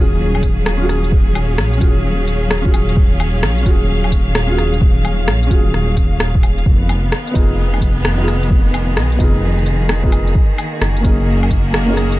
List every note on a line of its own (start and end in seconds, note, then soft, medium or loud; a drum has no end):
0.00 1.60 D#1 medium
0.00 6.66 F#3 medium
0.00 0.89 A#3 medium
0.00 0.76 C#4 medium
0.00 7.52 C#4 medium
0.00 0.74 D#4 medium
0.00 0.77 F4 medium
0.00 0.78 F#4 medium
0.00 6.66 G#4 medium
0.00 0.80 G#4 medium
0.00 10.36 F5 medium
0.35 low woodblock medium
0.43 kick medium
0.43 closed hi-hat medium
0.66 cross-stick loud
0.77 1.76 C#4 medium
0.77 1.78 F4 medium
0.83 1.80 F#4 medium
0.83 1.82 G#4 medium
0.89 cross-stick medium
0.89 closed hi-hat medium
1.04 closed hi-hat soft
1.12 kick loud
1.35 closed hi-hat medium
1.35 low woodblock medium
1.58 1.80 A#1 medium
1.58 cross-stick loud
1.73 2.60 C#4 medium
1.73 closed hi-hat soft
1.80 3.44 D#1 medium
1.80 2.61 F4 medium
1.80 2.63 F#4 medium
1.80 kick loud
1.80 closed hi-hat medium
1.85 2.64 G#4 medium
2.28 closed hi-hat medium
2.51 cross-stick loud
2.62 3.61 C#4 medium
2.62 3.63 F4 medium
2.62 kick loud
2.67 3.65 F#4 medium
2.67 3.66 G#4 medium
2.74 closed hi-hat medium
2.74 low woodblock medium
2.89 closed hi-hat soft
2.97 kick loud
3.20 closed hi-hat medium
3.20 low woodblock medium
3.43 3.65 A#1 medium
3.43 cross-stick loud
3.58 4.45 C#4 medium
3.58 closed hi-hat soft
3.65 5.29 D#1 medium
3.65 4.46 F4 medium
3.65 4.48 F#4 medium
3.65 kick loud
3.65 closed hi-hat medium
3.70 4.49 G#4 medium
4.04 low woodblock soft
4.12 kick medium
4.12 closed hi-hat medium
4.35 cross-stick loud
4.47 5.45 C#4 medium
4.47 5.48 F4 medium
4.52 5.50 F#4 medium
4.52 5.51 G#4 medium
4.58 cross-stick medium
4.58 closed hi-hat medium
4.74 closed hi-hat soft
4.81 kick loud
5.05 closed hi-hat medium
5.05 low woodblock medium
5.28 5.49 A#1 medium
5.28 cross-stick loud
5.43 6.30 C#4 medium
5.43 closed hi-hat soft
5.50 6.65 D#1 medium
5.50 6.31 F4 medium
5.50 6.32 F#4 medium
5.50 kick loud
5.50 closed hi-hat medium
5.55 6.34 G#4 medium
5.74 cross-stick medium
5.97 kick medium
5.97 closed hi-hat medium
6.20 cross-stick loud
6.35 kick loud
6.43 closed hi-hat medium
6.43 low woodblock soft
6.58 closed hi-hat soft
6.66 7.11 F1 loud
6.66 12.20 D#3 medium
6.66 kick loud
6.72 10.36 B3 medium
6.89 closed hi-hat medium
6.89 cabasa medium
6.89 low woodblock medium
7.12 cross-stick loud
7.27 8.14 B3 medium
7.27 12.20 G#4 medium
7.27 closed hi-hat soft
7.34 8.98 F1 medium
7.34 8.15 D#4 medium
7.34 8.17 F4 medium
7.34 kick loud
7.34 closed hi-hat medium
7.34 cabasa medium
7.39 8.18 G#4 medium
7.74 low woodblock soft
7.81 kick medium
7.81 closed hi-hat medium
7.81 cabasa medium
8.05 cross-stick loud
8.16 9.14 B3 medium
8.16 9.17 D#4 medium
8.21 9.19 F4 medium
8.21 9.20 G#4 medium
8.28 cross-stick medium
8.28 closed hi-hat medium
8.28 cabasa medium
8.43 closed hi-hat soft
8.51 kick loud
8.74 closed hi-hat medium
8.74 cabasa medium
8.74 low woodblock medium
8.97 9.19 B1 medium
8.97 cross-stick medium
9.12 9.99 B3 medium
9.12 closed hi-hat soft
9.19 10.34 F1 medium
9.19 10.00 D#4 medium
9.19 10.01 F4 medium
9.19 kick loud
9.19 closed hi-hat medium
9.19 cabasa medium
9.24 10.03 G#4 medium
9.58 cabasa soft
9.66 closed hi-hat soft
9.66 cabasa medium
9.89 cross-stick loud
10.02 10.33 B3 medium
10.02 10.34 D#4 medium
10.02 10.35 F4 medium
10.02 kick loud
10.06 10.35 G#4 medium
10.12 closed hi-hat medium
10.12 cabasa medium
10.12 low woodblock medium
10.27 closed hi-hat soft
10.35 kick loud
10.56 12.20 A#3 medium
10.56 closed hi-hat medium
10.56 cabasa medium
10.56 low woodblock medium
10.72 12.20 F#4 medium
10.82 11.03 F#1 medium
10.82 cross-stick loud
10.97 11.83 A#3 medium
10.97 closed hi-hat soft
11.03 12.20 F#1 medium
11.03 11.85 C#4 medium
11.03 11.86 D#4 medium
11.03 kick loud
11.03 closed hi-hat medium
11.03 cabasa medium
11.09 11.87 G#4 medium
11.43 low woodblock medium
11.51 kick medium
11.51 closed hi-hat medium
11.51 cabasa medium
11.74 cross-stick loud
11.85 12.20 A#3 medium
11.85 12.20 C#4 medium
11.90 12.20 D#4 medium
11.90 12.20 G#4 medium
11.97 cross-stick medium
11.97 closed hi-hat medium
11.97 cabasa medium
12.12 closed hi-hat soft